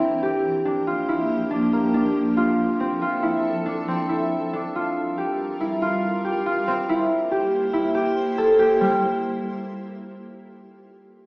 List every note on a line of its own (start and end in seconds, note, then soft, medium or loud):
0.00 0.22 E3 medium
0.00 0.66 A#3 medium
0.00 0.22 C4 medium
0.00 2.59 C4 medium
0.00 0.65 D4 medium
0.00 0.93 E4 medium
0.00 0.22 G4 medium
0.00 0.22 A#4 medium
0.23 4.49 F3 medium
0.23 2.35 A#3 medium
0.23 2.58 G4 medium
0.23 2.35 G4 medium
0.65 1.50 D4 medium
0.87 1.15 F4 medium
1.09 2.43 E4 medium
1.51 1.94 D4 medium
1.73 4.94 A#3 medium
1.94 3.65 D4 medium
2.36 3.01 F4 medium
2.36 4.51 A4 medium
2.36 4.51 E5 medium
2.80 3.88 C4 medium
3.02 3.29 F4 medium
3.23 4.08 E4 medium
3.66 4.53 D4 medium
3.88 6.67 C4 medium
4.09 4.81 E4 medium
4.53 6.66 G3 medium
4.53 7.33 D4 medium
4.53 6.66 F4 medium
4.53 6.66 A#4 medium
4.75 5.67 F4 medium
5.18 6.24 G4 medium
5.61 5.88 E4 medium
5.82 6.46 F4 medium
6.25 7.31 G4 medium
6.46 6.95 F4 medium
6.68 8.79 A#3 medium
6.68 6.83 C4 medium
6.68 8.80 E4 medium
6.68 8.80 C5 medium
6.89 7.19 E4 medium
7.31 7.61 G4 medium
7.73 7.89 E4 medium
7.95 8.25 G4 medium
8.38 8.53 A4 medium
8.59 8.75 G4 medium
8.81 9.01 G3 medium